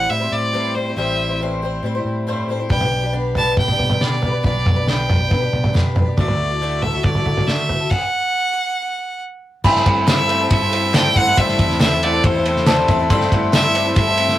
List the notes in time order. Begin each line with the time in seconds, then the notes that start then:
Already playing: C4 E4 C5 F#5
0.09 E2 A2 G3 C4 E4 C5 E5
0.19 G3 C4 E4 C5
0.32 A2 C4 D5
0.53 A2 E3 G3 C4 E4 C5
0.75 G3 C4 E4 C5
0.86 G3 C4 E4 C5
0.96 A1 A2 E3 G3 C4 E4 C5 E5
1.29 G3 C4 E4 C5
1.40 A2 E3 G3 C4 E4 C5
1.62 G3 C4 E4 C5
1.83 E2 A2 G3 C4 E4 C5
1.95 G3 C4 E4 C5
2.04 A2 C4
2.27 G2 A2 E3 G3 C4 E4 C5
2.48 A2 G3 C4 E4 C5
2.59 G3 C4 E4 C5
2.69 B1 B2 G3 B3 D4 G4 B4 G5, kick, floor tom
2.81 floor tom
3.02 D4 G4 B4
3.12 D3 B3 D4 G4 B4
3.35 B3 D4 G4 B4 A5, floor tom
3.56 B2 G3 B3 D4 G4 B4 G5, kick, floor tom
3.68 D4 G4 B4, floor tom
3.78 B2 B3, floor tom
3.89 D4 G4 B4, floor tom
3.99 D3 G3 B3 D4 G4 B4 D5, snare
4.21 B3 D4 G4 B4, floor tom
4.32 D4 G4 B4
4.43 B1 B2 G3 B3 D4 G4 B4 D5, kick, floor tom
4.66 kick, floor tom, mid tom
4.76 D4 G4 B4
4.87 D3 B3 D4 G4 B4 G5, snare
5.08 B3 D4 G4 B4, floor tom, mid tom
5.19 D4 G4 B4
5.28 B2 G3 B3 D4 G4 B4, kick, floor tom
5.41 D4 G4 B4
5.52 B2 B3, floor tom
5.63 D4 G4 B4, floor tom
5.73 D3 G3 B3 D4 G4 B4, snare, mid tom
5.95 B3 D4 G4 B4, floor tom, mid tom
6.06 D4 G4 B4
6.17 D2 D3 A3 E4 F#4 A4 D5, kick, floor tom
6.28 floor tom
6.49 E4 F#4 A4
6.61 D3 A3 D4 E4 F#4 A4
6.82 A3 E4 F#4 A4 E5, floor tom
6.93 E4 F#4 A4
7.03 A2 D3 A3 E4 F#4 A4 D5, kick, floor tom
7.15 F#4 A4, floor tom
7.19 E4
7.26 D3 A4, floor tom
7.37 floor tom
7.47 D3 A3 D4 E4 F#4 A4 E5, snare
7.69 A3 E4 F#4 A4, floor tom
7.80 E4 F#4 A4
7.90 F#5, kick, crash
9.64 G1 G2 G3 A3 C4 E4 A4 C5 E5 B5, kick, crash
9.76 snare
9.86 G2 A3 C4 E4 C5 F#5, kick, ride
10.07 G3 A3 C4 E4 A4 C5 E5, snare, clap, ride, tambourine
10.28 A3 C4 E4 A4 C5 E5, ride
10.40 C4 E4 A4
10.50 G2 A3 C4 E4 C5 E5, kick, ride
10.60 C4 E4 A4
10.72 A3 C4 E4 A4 C5 E5, ride
10.94 G3 A3 C4 E4 A4 C5 G5, snare, clap, ride, tambourine
11.16 G2 A3 C4 E4 A4 C5 F#5 G5, kick, ride
11.27 C4 E4 A4
11.37 G1 G2 G3 A3 C4 E4 A4 C5 E5, kick, ride
11.48 snare
11.59 E2 A3 C4 E4 C5 E5, kick, ride
11.70 snare
11.80 G3 A3 C4 E4 A4 C5 E5 G5, snare, clap, ride, tambourine
11.91 C4 E4 A4
12.02 A3 C4 E4 A4 C5 D5 F#5, ride
12.13 C4 E4 A4
12.24 E2 A3 C4 E4 C5 G5, kick, ride
12.34 C4 E4 A4
12.45 A3 C4 E4 A4 C5 E5, ride
12.56 snare
12.67 G3 A3 C4 E4 A4 C5 E5 A5, snare, clap, ride, tambourine
12.88 E2 A3 C4 E4 A4 C5 E5, kick, ride
12.99 C4 E4 A4
13.10 G1 G2 G3 A3 C4 E4 A4 C5 E5 C6, kick, ride
13.21 snare
13.32 G2 A3 C4 E4 C5 F#5, kick, ride
13.53 G3 A3 C4 E4 A4 C5 E5, snare, clap, ride, tambourine
13.73 A3 C4 E4 A4 C5 D5, ride
13.85 C4 E4 A4
13.96 G2 A3 C4 E4 C5 E5, kick, ride
14.07 C4 E4 A4
14.17 A3 C4 E4 A4 C5 E5, ride
14.28 snare